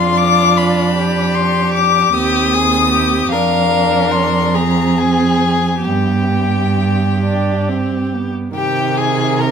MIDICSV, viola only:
0, 0, Header, 1, 2, 480
1, 0, Start_track
1, 0, Key_signature, -3, "minor"
1, 0, Tempo, 777202
1, 591, Time_signature, 6, 3, 24, 8
1, 1559, Tempo, 801068
1, 2519, Tempo, 863309
1, 3479, Tempo, 902256
1, 4919, Tempo, 835655
1, 5466, End_track
2, 0, Start_track
2, 0, Title_t, "Viola"
2, 0, Program_c, 0, 41
2, 0, Note_on_c, 0, 62, 61
2, 1317, Note_off_c, 0, 62, 0
2, 1325, Note_on_c, 0, 60, 65
2, 2043, Note_on_c, 0, 62, 66
2, 2052, Note_off_c, 0, 60, 0
2, 2758, Note_on_c, 0, 60, 60
2, 2766, Note_off_c, 0, 62, 0
2, 3476, Note_off_c, 0, 60, 0
2, 3479, Note_on_c, 0, 59, 50
2, 4148, Note_off_c, 0, 59, 0
2, 4214, Note_on_c, 0, 62, 59
2, 4454, Note_on_c, 0, 60, 56
2, 4462, Note_off_c, 0, 62, 0
2, 4694, Note_on_c, 0, 59, 45
2, 4702, Note_off_c, 0, 60, 0
2, 4915, Note_off_c, 0, 59, 0
2, 4919, Note_on_c, 0, 51, 63
2, 5466, Note_off_c, 0, 51, 0
2, 5466, End_track
0, 0, End_of_file